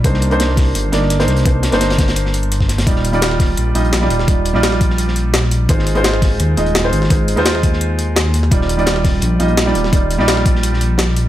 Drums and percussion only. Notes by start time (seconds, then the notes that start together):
0.04 kick, closed hi-hat
0.14 snare
0.22 closed hi-hat
0.31 closed hi-hat
0.40 snare, closed hi-hat
0.48 snare
0.57 kick, snare, closed hi-hat, open hi-hat
0.75 closed hi-hat
0.92 snare, closed hi-hat
1.02 snare
1.10 snare, closed hi-hat
1.20 snare, closed hi-hat
1.28 snare, closed hi-hat
1.36 snare, closed hi-hat
1.46 kick, closed hi-hat
1.63 snare, closed hi-hat
1.72 snare, closed hi-hat
1.80 snare, closed hi-hat
1.90 snare, closed hi-hat
1.98 kick, snare, closed hi-hat
2.08 snare, closed hi-hat
2.16 closed hi-hat
2.25 snare
2.34 closed hi-hat
2.43 closed hi-hat
2.52 closed hi-hat
2.60 kick, snare
2.69 snare, closed hi-hat
2.78 snare, closed hi-hat
2.87 kick, closed hi-hat
2.96 snare
3.04 closed hi-hat
3.13 closed hi-hat
3.22 snare, closed hi-hat
3.31 snare
3.40 kick, snare, closed hi-hat, open hi-hat
3.57 closed hi-hat
3.75 closed hi-hat
3.84 closed hi-hat
3.93 snare, closed hi-hat
4.01 snare
4.10 closed hi-hat
4.19 snare
4.28 kick, closed hi-hat
4.45 closed hi-hat
4.55 snare
4.63 snare, closed hi-hat
4.72 snare
4.81 kick, closed hi-hat
4.90 snare
4.98 closed hi-hat
5.08 snare
5.16 closed hi-hat
5.34 snare, closed hi-hat
5.44 snare
5.51 closed hi-hat
5.69 kick, closed hi-hat
5.79 snare
5.87 closed hi-hat
5.95 closed hi-hat
6.04 snare, closed hi-hat
6.13 snare
6.22 kick, snare, closed hi-hat, open hi-hat
6.40 closed hi-hat
6.57 closed hi-hat
6.66 closed hi-hat
6.75 snare, closed hi-hat
6.84 snare
6.93 closed hi-hat
7.02 snare
7.10 kick, closed hi-hat
7.28 closed hi-hat
7.37 snare, closed hi-hat
7.45 snare, closed hi-hat
7.55 snare
7.63 kick, closed hi-hat
7.73 snare
7.81 closed hi-hat
7.99 closed hi-hat
8.16 snare, closed hi-hat
8.25 snare
8.34 closed hi-hat
8.43 snare
8.51 kick, closed hi-hat
8.61 snare
8.69 closed hi-hat
8.79 closed hi-hat
8.86 snare, closed hi-hat
8.96 snare
9.04 kick, snare, closed hi-hat, open hi-hat
9.22 closed hi-hat
9.40 closed hi-hat
9.48 closed hi-hat
9.57 snare, closed hi-hat
9.67 snare
9.75 closed hi-hat
9.84 snare
9.93 kick, closed hi-hat
10.11 closed hi-hat
10.19 snare
10.28 snare, closed hi-hat
10.37 snare
10.46 kick, closed hi-hat
10.55 snare
10.63 closed hi-hat
10.73 snare
10.81 closed hi-hat
10.98 snare, closed hi-hat
11.08 snare
11.16 closed hi-hat